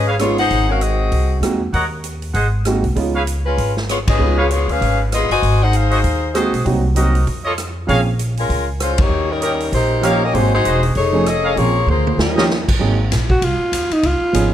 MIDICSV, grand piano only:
0, 0, Header, 1, 2, 480
1, 0, Start_track
1, 0, Tempo, 307377
1, 789, Time_signature, 4, 2, 24, 8
1, 22704, End_track
2, 0, Start_track
2, 0, Title_t, "Grand piano"
2, 0, Program_c, 0, 0
2, 301, Note_on_c, 0, 56, 55
2, 307, Note_on_c, 0, 59, 54
2, 319, Note_on_c, 0, 61, 55
2, 326, Note_on_c, 0, 63, 58
2, 335, Note_on_c, 0, 65, 60
2, 564, Note_off_c, 0, 56, 0
2, 567, Note_off_c, 0, 59, 0
2, 573, Note_off_c, 0, 61, 0
2, 577, Note_off_c, 0, 63, 0
2, 581, Note_off_c, 0, 65, 0
2, 2221, Note_on_c, 0, 56, 58
2, 2227, Note_on_c, 0, 58, 55
2, 2236, Note_on_c, 0, 60, 52
2, 2243, Note_on_c, 0, 63, 53
2, 2253, Note_on_c, 0, 66, 60
2, 2483, Note_off_c, 0, 56, 0
2, 2487, Note_off_c, 0, 58, 0
2, 2491, Note_off_c, 0, 60, 0
2, 2495, Note_off_c, 0, 63, 0
2, 2499, Note_off_c, 0, 66, 0
2, 4153, Note_on_c, 0, 56, 55
2, 4161, Note_on_c, 0, 58, 50
2, 4166, Note_on_c, 0, 60, 51
2, 4169, Note_on_c, 0, 63, 52
2, 4182, Note_on_c, 0, 66, 63
2, 4409, Note_off_c, 0, 56, 0
2, 4413, Note_off_c, 0, 58, 0
2, 4415, Note_off_c, 0, 60, 0
2, 4417, Note_off_c, 0, 63, 0
2, 4424, Note_off_c, 0, 66, 0
2, 4615, Note_on_c, 0, 56, 50
2, 4616, Note_on_c, 0, 59, 45
2, 4634, Note_on_c, 0, 61, 49
2, 4634, Note_on_c, 0, 63, 47
2, 4643, Note_on_c, 0, 65, 56
2, 4880, Note_off_c, 0, 56, 0
2, 4880, Note_off_c, 0, 59, 0
2, 4889, Note_off_c, 0, 61, 0
2, 4889, Note_off_c, 0, 63, 0
2, 4894, Note_off_c, 0, 65, 0
2, 6539, Note_on_c, 0, 56, 51
2, 6545, Note_on_c, 0, 59, 45
2, 6556, Note_on_c, 0, 61, 50
2, 6559, Note_on_c, 0, 63, 45
2, 6578, Note_on_c, 0, 65, 57
2, 6801, Note_off_c, 0, 56, 0
2, 6805, Note_off_c, 0, 59, 0
2, 6810, Note_off_c, 0, 61, 0
2, 6812, Note_off_c, 0, 63, 0
2, 6821, Note_off_c, 0, 65, 0
2, 9910, Note_on_c, 0, 56, 52
2, 9919, Note_on_c, 0, 58, 55
2, 9931, Note_on_c, 0, 63, 53
2, 9934, Note_on_c, 0, 60, 53
2, 9943, Note_on_c, 0, 66, 60
2, 10167, Note_off_c, 0, 56, 0
2, 10171, Note_off_c, 0, 58, 0
2, 10178, Note_off_c, 0, 63, 0
2, 10179, Note_off_c, 0, 60, 0
2, 10184, Note_off_c, 0, 66, 0
2, 10380, Note_on_c, 0, 54, 56
2, 10384, Note_on_c, 0, 58, 53
2, 10389, Note_on_c, 0, 60, 48
2, 10406, Note_on_c, 0, 63, 54
2, 10410, Note_on_c, 0, 66, 62
2, 10642, Note_off_c, 0, 54, 0
2, 10644, Note_off_c, 0, 58, 0
2, 10647, Note_off_c, 0, 60, 0
2, 10655, Note_off_c, 0, 63, 0
2, 10657, Note_off_c, 0, 66, 0
2, 10852, Note_on_c, 0, 54, 49
2, 10862, Note_on_c, 0, 58, 42
2, 10873, Note_on_c, 0, 60, 48
2, 10878, Note_on_c, 0, 63, 45
2, 10879, Note_on_c, 0, 66, 55
2, 11118, Note_off_c, 0, 54, 0
2, 11123, Note_off_c, 0, 58, 0
2, 11129, Note_off_c, 0, 60, 0
2, 11131, Note_off_c, 0, 63, 0
2, 11132, Note_off_c, 0, 66, 0
2, 12287, Note_on_c, 0, 53, 52
2, 12298, Note_on_c, 0, 58, 48
2, 12301, Note_on_c, 0, 60, 50
2, 12309, Note_on_c, 0, 61, 51
2, 12318, Note_on_c, 0, 68, 55
2, 12556, Note_off_c, 0, 53, 0
2, 12561, Note_off_c, 0, 58, 0
2, 12563, Note_off_c, 0, 60, 0
2, 12566, Note_off_c, 0, 61, 0
2, 12571, Note_off_c, 0, 68, 0
2, 15639, Note_on_c, 0, 53, 61
2, 15646, Note_on_c, 0, 58, 53
2, 15648, Note_on_c, 0, 61, 52
2, 15665, Note_on_c, 0, 63, 55
2, 15669, Note_on_c, 0, 67, 67
2, 15911, Note_off_c, 0, 53, 0
2, 15915, Note_off_c, 0, 58, 0
2, 15916, Note_off_c, 0, 61, 0
2, 15924, Note_off_c, 0, 63, 0
2, 15926, Note_off_c, 0, 67, 0
2, 16132, Note_on_c, 0, 54, 60
2, 16141, Note_on_c, 0, 58, 54
2, 16150, Note_on_c, 0, 63, 55
2, 16151, Note_on_c, 0, 60, 58
2, 16166, Note_on_c, 0, 68, 68
2, 16398, Note_off_c, 0, 54, 0
2, 16403, Note_off_c, 0, 58, 0
2, 16407, Note_off_c, 0, 60, 0
2, 16407, Note_off_c, 0, 63, 0
2, 16415, Note_off_c, 0, 68, 0
2, 17375, Note_on_c, 0, 53, 70
2, 17378, Note_on_c, 0, 57, 58
2, 17391, Note_on_c, 0, 61, 63
2, 17392, Note_on_c, 0, 63, 63
2, 17409, Note_on_c, 0, 68, 73
2, 17556, Note_off_c, 0, 53, 0
2, 17558, Note_off_c, 0, 57, 0
2, 17564, Note_off_c, 0, 61, 0
2, 17565, Note_off_c, 0, 63, 0
2, 17573, Note_off_c, 0, 68, 0
2, 18047, Note_on_c, 0, 53, 49
2, 18062, Note_on_c, 0, 58, 44
2, 18075, Note_on_c, 0, 60, 49
2, 18075, Note_on_c, 0, 61, 44
2, 18083, Note_on_c, 0, 68, 52
2, 18315, Note_off_c, 0, 53, 0
2, 18323, Note_off_c, 0, 58, 0
2, 18329, Note_off_c, 0, 60, 0
2, 18329, Note_off_c, 0, 61, 0
2, 18333, Note_off_c, 0, 68, 0
2, 19299, Note_on_c, 0, 53, 63
2, 19313, Note_on_c, 0, 58, 54
2, 19317, Note_on_c, 0, 61, 55
2, 19328, Note_on_c, 0, 63, 53
2, 19329, Note_on_c, 0, 67, 67
2, 19478, Note_off_c, 0, 53, 0
2, 19485, Note_off_c, 0, 58, 0
2, 19487, Note_off_c, 0, 61, 0
2, 19492, Note_off_c, 0, 63, 0
2, 19493, Note_off_c, 0, 67, 0
2, 19977, Note_on_c, 0, 54, 60
2, 19978, Note_on_c, 0, 58, 51
2, 19982, Note_on_c, 0, 60, 49
2, 19997, Note_on_c, 0, 63, 55
2, 19999, Note_on_c, 0, 68, 68
2, 20240, Note_off_c, 0, 54, 0
2, 20241, Note_off_c, 0, 58, 0
2, 20243, Note_off_c, 0, 60, 0
2, 20250, Note_off_c, 0, 63, 0
2, 20251, Note_off_c, 0, 68, 0
2, 22371, Note_on_c, 0, 53, 59
2, 22381, Note_on_c, 0, 59, 53
2, 22395, Note_on_c, 0, 61, 57
2, 22400, Note_on_c, 0, 63, 51
2, 22403, Note_on_c, 0, 68, 62
2, 22638, Note_off_c, 0, 53, 0
2, 22643, Note_off_c, 0, 59, 0
2, 22650, Note_off_c, 0, 61, 0
2, 22652, Note_off_c, 0, 63, 0
2, 22654, Note_off_c, 0, 68, 0
2, 22704, End_track
0, 0, End_of_file